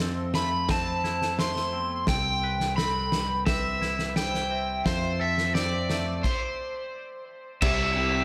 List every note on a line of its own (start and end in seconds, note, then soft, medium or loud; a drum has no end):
0.00 2.05 F2 medium
0.00 1.04 F3 medium
0.00 0.69 C4 medium
0.00 1.39 A4 medium
0.00 0.35 C5 medium
0.34 1.38 A3 soft
0.34 0.70 E5 medium
0.34 0.70 B5 medium
0.34 snare medium
0.69 1.73 C4 medium
0.69 1.38 C5 medium
0.69 1.40 A5 medium
0.69 kick medium
0.69 snare medium
1.04 3.81 E4 medium
1.04 snare soft
1.22 snare soft
1.39 2.09 A3 medium
1.39 1.74 C5 medium
1.39 2.08 C6 medium
1.39 snare medium
1.56 snare soft
1.73 2.08 B3 medium
1.73 2.47 C4 medium
2.07 4.82 C2 medium
2.07 3.82 C3 medium
2.07 2.76 G5 medium
2.07 kick medium
2.07 snare medium
2.44 4.17 B4 medium
2.60 snare soft
2.76 3.46 C4 medium
2.76 3.13 A4 medium
2.76 3.46 B5 medium
2.76 snare medium
3.12 4.16 G3 soft
3.12 3.46 B4 medium
3.12 snare medium
3.46 4.50 C4 medium
3.46 4.17 B4 medium
3.46 4.17 E5 medium
3.46 kick medium
3.46 snare loud
3.82 4.86 E4 soft
3.82 snare soft
3.99 snare soft
4.16 4.86 G3 medium
4.16 4.52 C5 medium
4.16 4.88 G5 medium
4.16 snare medium
4.34 snare soft
4.51 4.86 C4 soft
4.51 4.86 E5 medium
4.85 6.22 F2 medium
4.85 6.24 F3 medium
4.85 5.22 C5 medium
4.85 5.56 E5 medium
4.85 kick medium
4.85 snare medium
5.19 6.24 A4 medium
5.19 5.54 E5 medium
5.38 snare soft
5.55 6.24 C4 medium
5.55 5.90 C5 medium
5.55 6.26 D5 medium
5.55 snare medium
5.89 6.24 A3 soft
5.89 6.25 E5 medium
5.89 snare medium
6.23 7.24 C5 medium
6.23 kick medium
6.23 crash medium
7.62 8.24 C2 loud
7.62 7.96 C3 loud
7.62 8.24 C3 medium
7.62 7.97 G3 loud
7.62 7.98 C4 loud
7.62 7.98 E4 loud
7.62 8.24 E5 medium
7.62 kick loud
7.62 crash loud
7.62 crash medium
7.96 8.24 C3 medium
7.96 8.24 G3 medium
7.96 8.16 G3 medium
7.96 8.15 C4 medium
7.96 8.13 E4 medium
8.14 8.24 G3 medium
8.14 8.24 C4 medium
8.14 8.24 E4 medium